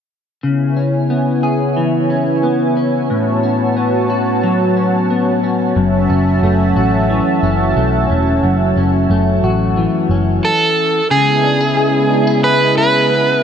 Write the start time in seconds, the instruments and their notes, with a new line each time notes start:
0.43 clean electric guitar C#3, analog synth pad B3 E4 C#5 G#5
0.77 clean electric guitar C#4
1.10 clean electric guitar B3
1.43 clean electric guitar G#4
1.77 clean electric guitar E3
2.10 clean electric guitar C#4
2.43 clean electric guitar B3
2.77 clean electric guitar C#4
3.10 clean electric guitar A2, analog synth pad F#4 A5
3.43 clean electric guitar C#4
3.77 clean electric guitar B3
4.10 clean electric guitar F#4
4.43 clean electric guitar F#3
4.77 clean electric guitar C#4
5.10 clean electric guitar B3
5.43 clean electric guitar C#4
5.76 picked electric bass F#1, clean electric guitar F#2, analog synth pad C#4 F#4 E5 A5
6.10 picked electric bass F#1, clean electric guitar C#4
6.43 picked electric bass F#1, clean electric guitar A3
6.76 picked electric bass A1, clean electric guitar F#4
7.10 clean electric guitar E3
7.43 picked electric bass F#1, clean electric guitar C#4
7.76 picked electric bass B1, clean electric guitar A3
8.10 picked electric bass E1, clean electric guitar C#4
8.43 picked electric bass F#1, clean electric guitar F#2
8.77 picked electric bass F#1, clean electric guitar C#4
9.10 picked electric bass F#1, clean electric guitar A3
9.43 picked electric bass A1, clean electric guitar F#4
9.77 clean electric guitar E3
10.09 picked electric bass F#1, clean electric guitar C#4
10.45 electric slide guitar A4
11.10 analog synth pad C#3 G#3 B3 E4, clean electric guitar C#3, electric slide guitar G#4
11.44 clean electric guitar D4
11.61 clean electric guitar E4
11.77 clean electric guitar G#4
12.10 clean electric guitar D4
12.27 clean electric guitar E4
12.44 clean electric guitar G#4, electric slide guitar B4
12.77 clean electric guitar E4, electric slide guitar B4
13.10 clean electric guitar B3